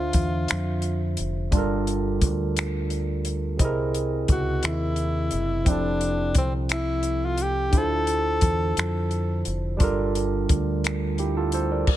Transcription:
Already playing: fingered electric bass D2, tine electric piano D3 D4 F4 C5 E5, tenor saxophone F4
0.13 fingered electric bass E2, kick, closed hi-hat
0.48 fingered electric bass F2, finger snap, closed hi-hat
0.82 closed hi-hat
1.17 fingered electric bass F1, closed hi-hat
1.51 fingered electric bass G1, tine electric piano G3 D4 F4, kick, closed hi-hat
1.57 tine electric piano A4 A#4
1.87 closed hi-hat
2.21 fingered electric bass D2, kick, closed hi-hat
2.57 finger snap, closed hi-hat
2.90 closed hi-hat
3.25 closed hi-hat
3.57 fingered electric bass C2, tine electric piano C3 C4 D#5, kick, closed hi-hat
3.61 tine electric piano E4 G#4 A#4
3.94 closed hi-hat
4.28 fingered electric bass C#2, tenor saxophone F#4, kick, closed hi-hat
4.63 fingered electric bass D#2, tenor saxophone E4, finger snap, closed hi-hat
4.96 closed hi-hat
5.31 fingered electric bass F#1, closed hi-hat
5.64 fingered electric bass F1, tine electric piano F3 C4 E4, kick, closed hi-hat
5.68 tenor saxophone D4, tine electric piano G4 A4
6.01 closed hi-hat
6.35 fingered electric bass C2, tenor saxophone C4, kick, closed hi-hat
6.69 tenor saxophone E4, finger snap, closed hi-hat
7.03 closed hi-hat
7.25 tenor saxophone F4
7.38 closed hi-hat
7.42 tenor saxophone G4
7.70 fingered electric bass D2, tine electric piano D3 D4 E4, kick, closed hi-hat
7.75 tine electric piano F4 C5, tenor saxophone A4
8.07 closed hi-hat
8.41 fingered electric bass E2, kick, closed hi-hat
8.77 fingered electric bass F2, finger snap, closed hi-hat
9.11 closed hi-hat
9.45 fingered electric bass F1, closed hi-hat
9.77 tine electric piano G3 D4 F4, kick, closed hi-hat
9.81 fingered electric bass G1, tine electric piano A4 A#4
10.15 closed hi-hat
10.49 fingered electric bass D2, kick, closed hi-hat
10.84 finger snap, closed hi-hat
11.18 tine electric piano E4 G4, closed hi-hat
11.37 tine electric piano F4 A4
11.52 tine electric piano A4 C5, closed hi-hat
11.72 tine electric piano A#4 D5
11.87 kick, crash

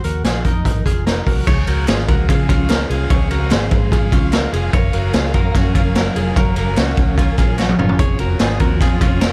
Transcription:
0.04 fingered electric bass D#2, clean electric guitar F#4 A#4, closed hi-hat
0.24 fingered electric bass A#1, clean electric guitar F4 G#4, snare, closed hi-hat
0.44 fingered electric bass F2, clean electric guitar D#4 A#4, kick, closed hi-hat
0.65 fingered electric bass G#1, kick, closed hi-hat
0.86 fingered electric bass F1, clean electric guitar F4 G#4, kick, closed hi-hat
1.06 clean electric guitar D#4 A#4, snare, closed hi-hat
1.26 fingered electric bass C2, clean electric guitar F#4 A#4, kick, open hi-hat
1.47 fingered electric bass C#2, string section C#3 G#3 C4 F5, clean electric guitar G#4 C#5, kick, crash
1.67 fingered electric bass C#2, clean electric guitar F#4 A#4, ride
1.88 fingered electric bass G#1, clean electric guitar F4 G#4, snare, clap, ride
2.08 fingered electric bass C#2, clean electric guitar F#4 A#4, kick, ride
2.29 fingered electric bass C#3, clean electric guitar F4 G#4, kick, ride
2.49 fingered electric bass C#2, clean electric guitar C#4 F4, kick, ride
2.69 clean electric guitar F4 A#4, snare, clap, ride
2.90 fingered electric bass C2, clean electric guitar F4 G#4, ride
3.10 fingered electric bass C#2, clean electric guitar G#4 C#5, kick, ride
3.31 fingered electric bass C#2, clean electric guitar F#4 A#4, ride
3.51 fingered electric bass G#1, clean electric guitar G#4 C5, snare, clap, ride
3.71 fingered electric bass G#2, kick, ride
3.92 clean electric guitar F4 G#4, kick, ride
4.12 fingered electric bass C#2, clean electric guitar C#4 F4, kick, ride
4.33 clean electric guitar F4 A#4, snare, clap, ride
4.53 fingered electric bass F1, clean electric guitar F4 G#4, ride
4.73 fingered electric bass F#1, string section F#3 C#4 A#4, clean electric guitar A#4 C#5, kick, ride
4.93 fingered electric bass F#1, clean electric guitar F#4 A#4, ride
5.14 fingered electric bass C#2, clean electric guitar F4 G#4, snare, clap, ride
5.34 fingered electric bass F#2, clean electric guitar F#4 A#4, kick, ride
5.54 fingered electric bass F#2, clean electric guitar C#4 F#4, kick, snare, ride
5.75 fingered electric bass F#1, clean electric guitar C#4 F4, kick, ride
5.95 clean electric guitar F#4 A#4, snare, clap, ride
6.16 fingered electric bass F1, clean electric guitar F4 G#4, ride
6.36 fingered electric bass F#1, clean electric guitar F#4 A#4, kick, ride
6.56 fingered electric bass F#1, clean electric guitar F#4 A#4, ride
6.77 fingered electric bass C#2, clean electric guitar C#4 F#4, snare, clap, ride
6.97 fingered electric bass C#2, kick, ride
7.18 clean electric guitar C#4 F4, kick, ride
7.38 fingered electric bass A#1, clean electric guitar F4 G#4, kick, clap, ride
7.59 clean electric guitar C#4 F#4, snare, clap
7.69 high tom
7.79 fingered electric bass F#1, clean electric guitar C#4 F4, mid tom
7.89 floor tom
7.99 fingered electric bass F1, string section C4 F4, clean electric guitar G#4 C#5, kick, hi-hat pedal, ride
8.19 fingered electric bass F1, clean electric guitar F#4 A#4, ride
8.39 fingered electric bass G#1, clean electric guitar F4 G#4, snare, clap, ride
8.60 fingered electric bass D#2, clean electric guitar F#4 A#4, kick, ride
8.80 fingered electric bass F2, clean electric guitar F4 G#4, kick, snare, ride
9.01 fingered electric bass F1, clean electric guitar C#4 F4, kick, ride
9.21 clean electric guitar F4 A#4, snare, clap, ride

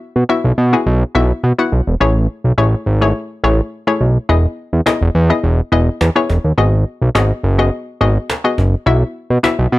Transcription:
Already playing: synth pluck B3 E4 F#4 E5
0.16 analog synth bass B2
0.29 synth pluck B3 E4 F#4 E5
0.44 analog synth bass B1
0.58 analog synth bass B2
0.73 synth pluck B3 E4 F#4 G#4
0.86 analog synth bass B1
1.15 analog synth bass B1, synth pluck B3 E4 F#4 E5
1.44 analog synth bass B2
1.59 synth pluck B3 E4 F#4 F#5
1.72 analog synth bass B1
1.87 analog synth bass E1
2.00 analog synth bass A1, synth pluck A3 E4 G#4 C#5
2.44 analog synth bass B1
2.58 analog synth bass A1, synth pluck A3 E4 G#4 C#5
2.86 analog synth bass G#1
3.01 synth pluck A3 E4 G#4 C#5
3.44 analog synth bass A1, synth pluck A3 E4 G#4 C#5
3.87 synth pluck A3 E4 G#4 C#5
4.01 analog synth bass B1
4.29 analog synth bass E1, synth pluck B3 E4 G#4 D#5
4.73 analog synth bass E2
4.86 synth pluck B3 E4 G#4 D#5, cajon slap
5.01 analog synth bass E1
5.15 analog synth bass E2
5.30 synth pluck B3 E4 G#4 D#5
5.44 analog synth bass E1
5.72 analog synth bass E1, synth pluck B3 E4 G#4 D#5
6.01 analog synth bass E2, cajon slap
6.16 synth pluck B3 E4 G#4 C#5
6.29 analog synth bass E1, cajon slap
6.44 analog synth bass D#2
6.58 analog synth bass G#1, synth pluck B3 F#4 G#4 D#5
7.02 analog synth bass B1
7.15 analog synth bass G#1, synth pluck B3 F#4 G#4 D#5, cajon slap
7.44 analog synth bass F#1
7.58 synth pluck B3 F#4 G#4 D#5
8.01 analog synth bass G#1, synth pluck B3 F#4 G#4 D#5
8.30 cajon slap
8.44 synth pluck B3 F#4 G#4 D#5
8.58 analog synth bass F#1, cajon slap
8.86 analog synth bass B1, synth pluck B3 E4 F#4 E5
9.30 analog synth bass B2
9.43 synth pluck B3 E4 F#4 E5, cajon slap
9.59 analog synth bass B1
9.72 analog synth bass B2

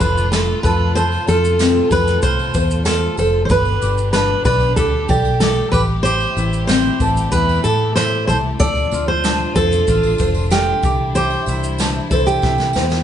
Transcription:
Already playing: string section C3 F3 A3 D4 F4, ukulele D4 F4 A4 C5
0.00 fingered electric bass F1, steel-string acoustic guitar B4, kick, tambourine, shaker
0.17 shaker
0.32 ukulele F4, steel-string acoustic guitar A4, snare, tambourine, shaker
0.63 fingered electric bass F2, string section C3 A4, ukulele A4, steel-string acoustic guitar B4, kick, tambourine, shaker
0.95 ukulele A4, steel-string acoustic guitar C5, tambourine, shaker
1.12 tambourine
1.27 fingered electric bass F2, ukulele F4, steel-string acoustic guitar A4, tambourine, shaker
1.45 shaker
1.59 ukulele C4, snare, tambourine, shaker
1.91 fingered electric bass F2, steel-string acoustic guitar B4, kick, tambourine, shaker
2.07 snare, shaker
2.23 fingered electric bass C2, ukulele F4, steel-string acoustic guitar C5, kick, tambourine, shaker
2.39 tambourine
2.54 fingered electric bass E2, ukulele C5, kick, tambourine, shaker
2.71 shaker
2.85 ukulele F4, steel-string acoustic guitar A4, snare, tambourine, shaker
3.17 fingered electric bass F1, steel-string acoustic guitar A4, ukulele C5, tambourine, shaker
3.45 steel-string acoustic guitar C5
3.49 fingered electric bass G1, string section B2 D3 G3 D4 G4, ukulele B4, steel-string acoustic guitar B4, kick, tambourine, shaker
3.65 tambourine
3.82 fingered electric bass G1, ukulele G4, tambourine, shaker
3.98 shaker
4.13 ukulele D4, steel-string acoustic guitar B4, snare, tambourine, shaker
4.45 fingered electric bass B1, steel-string acoustic guitar B4, ukulele D5, kick, tambourine, shaker
4.60 tambourine
4.76 fingered electric bass D2, ukulele G4, steel-string acoustic guitar A4, kick, tambourine, shaker
5.09 fingered electric bass B1, steel-string acoustic guitar G4, ukulele D5, kick, tambourine, shaker
5.25 tambourine
5.40 ukulele G4, steel-string acoustic guitar A4, snare, tambourine, shaker
5.72 fingered electric bass A1, string section C3 A3 E4, ukulele G4, steel-string acoustic guitar B4, kick, tambourine, shaker
6.03 ukulele G4, steel-string acoustic guitar C5, tambourine, shaker
6.20 tambourine
6.37 fingered electric bass A1, ukulele E4, tambourine, shaker
6.53 shaker
6.67 ukulele C4, steel-string acoustic guitar C5, snare, tambourine, shaker
7.00 fingered electric bass A1, ukulele A4, kick, tambourine, shaker
7.17 shaker
7.32 fingered electric bass E2, ukulele E4, steel-string acoustic guitar B4, kick, tambourine, shaker
7.49 tambourine
7.64 fingered electric bass A2, steel-string acoustic guitar A4, ukulele A4, tambourine, shaker
7.96 ukulele E4, steel-string acoustic guitar C5, snare, tambourine, shaker
8.27 fingered electric bass C2, ukulele A4, steel-string acoustic guitar C5, tambourine, shaker
8.60 fingered electric bass D2, string section F3 D4 F4, ukulele A4, steel-string acoustic guitar D5, kick, tambourine, shaker
8.75 tambourine
8.91 fingered electric bass D2, ukulele F4, tambourine, shaker
9.08 steel-string acoustic guitar C5
9.24 ukulele D4, snare, tambourine, shaker
9.56 fingered electric bass F2, steel-string acoustic guitar A4, ukulele C5, kick, tambourine, shaker
9.71 tambourine, shaker
9.88 fingered electric bass A1, ukulele F4, kick, tambourine, shaker
10.03 tambourine
10.18 fingered electric bass F1, ukulele C5, kick, tambourine, shaker
10.35 tambourine
10.51 ukulele F4, steel-string acoustic guitar G4, snare, tambourine, shaker
10.82 fingered electric bass C2, string section E3 G3 E4, ukulele G4, kick, tambourine, shaker
11.15 ukulele G4, steel-string acoustic guitar C5, tambourine, shaker
11.30 tambourine
11.46 fingered electric bass C2, ukulele E4, tambourine, shaker
11.64 shaker
11.78 ukulele D4, snare, tambourine, shaker
12.11 fingered electric bass C2, steel-string acoustic guitar A4, ukulele C5, kick, tambourine, shaker
12.26 steel-string acoustic guitar G4, tambourine, shaker
12.42 fingered electric bass C3, ukulele E4, kick, snare, tambourine
12.58 snare, tambourine
12.73 fingered electric bass E2, ukulele C5, snare, tambourine
12.90 snare, tambourine

